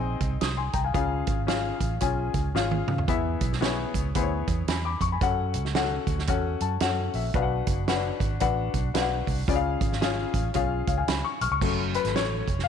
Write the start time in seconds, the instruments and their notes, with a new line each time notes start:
Already playing: fingered electric bass A#1, grand piano C4 D#4 G#4 D#5
0.20 fingered electric bass C2, kick, closed hi-hat
0.41 fingered electric bass C2, grand piano C6 D#6, snare, closed hi-hat
0.57 grand piano G#5 C6
0.73 fingered electric bass C2, grand piano G5 A#5, kick, closed hi-hat
0.84 grand piano F5 G#5
0.94 fingered electric bass C#2, grand piano C#3 C#4 F4 G#4 F5, kick, closed hi-hat
1.27 fingered electric bass G#1, kick, closed hi-hat
1.47 grand piano C#4 F4 G#4 F5, snare, closed hi-hat
1.80 fingered electric bass A1, kick, closed hi-hat
2.00 fingered electric bass B1, grand piano C#4 F4 G#4 G#5, kick, closed hi-hat
2.34 fingered electric bass C#2, kick, closed hi-hat
2.54 fingered electric bass G#1, grand piano C#4 F4 G#4 F5, snare
2.71 high tom
2.87 fingered electric bass C#3, mid tom
2.98 floor tom
3.08 fingered electric bass E2, grand piano E3 B3 E4 G#4 E5, kick, closed hi-hat
3.41 fingered electric bass B1, kick, closed hi-hat
3.53 snare
3.61 grand piano B3 E4 G#4 C#5, snare, closed hi-hat
3.94 fingered electric bass C#2, kick, closed hi-hat
4.15 fingered electric bass D2, grand piano B3 E4 G#4 C5, kick, closed hi-hat
4.23 grand piano C#5
4.48 fingered electric bass E2, kick, closed hi-hat
4.67 fingered electric bass E2, grand piano G#5 B5, snare, closed hi-hat
4.85 grand piano B5 D6
5.01 fingered electric bass F2, grand piano C#6, kick, closed hi-hat
5.12 grand piano G#5 B5
5.21 fingered electric bass F#2, grand piano C#4 F#4 A4 F#5, kick, closed hi-hat
5.54 fingered electric bass C#2, closed hi-hat
5.65 snare
5.75 grand piano C#4 F#4 A4 F#5, snare, closed hi-hat
6.07 fingered electric bass D2, kick, closed hi-hat
6.19 snare
6.27 fingered electric bass E2, grand piano C#4 F#4 A4 F#5, kick, closed hi-hat
6.60 fingered electric bass F#2, grand piano A5, closed hi-hat
6.80 fingered electric bass F#2, grand piano C#4 F#4 A4 F#5, snare, closed hi-hat
7.13 fingered electric bass A#1, grand piano E5, open hi-hat
7.34 fingered electric bass B1, grand piano B2 D4 F#4 B4 F5, kick, closed hi-hat
7.42 grand piano F#5
7.67 fingered electric bass F#1, kick, closed hi-hat
7.88 grand piano C#4 F#4 B4 F#5, snare, closed hi-hat
7.94 grand piano D4
8.20 fingered electric bass G#1, kick, closed hi-hat
8.40 fingered electric bass A1, grand piano D4 F#4 B4 F#5, kick, closed hi-hat
8.74 fingered electric bass B1, kick, closed hi-hat
8.94 fingered electric bass B1, grand piano D4 F#4 B4 F5, snare, closed hi-hat
9.02 grand piano F#5
9.27 fingered electric bass C2, kick, open hi-hat
9.48 fingered electric bass C#2, grand piano C#3 C#4 F4 G#4 D5, kick, closed hi-hat
9.56 grand piano F5
9.81 fingered electric bass G#1, kick, closed hi-hat
9.92 snare
10.01 grand piano C#4 F4 G#4 F5, snare, closed hi-hat
10.34 fingered electric bass A1, kick, closed hi-hat
10.54 fingered electric bass B1, grand piano C#4 F4 G#4 F5, kick, closed hi-hat
10.87 fingered electric bass C#2, grand piano C#5 F5, kick, closed hi-hat
10.97 grand piano F5 G#5
11.07 fingered electric bass C#2, grand piano G#5 B5, snare, closed hi-hat
11.25 grand piano C#6
11.41 fingered electric bass B1, grand piano C#6 F6, closed hi-hat
11.51 fingered electric bass C#2, grand piano C#6
11.61 fingered electric bass F#1, grand piano F#3 A3 C#4, kick, crash
11.94 grand piano B4, closed hi-hat
12.05 fingered electric bass G#1, snare, closed hi-hat
12.14 fingered electric bass A1, grand piano C#5, snare, closed hi-hat
12.48 fingered electric bass F1, kick, closed hi-hat
12.59 snare
12.64 grand piano F5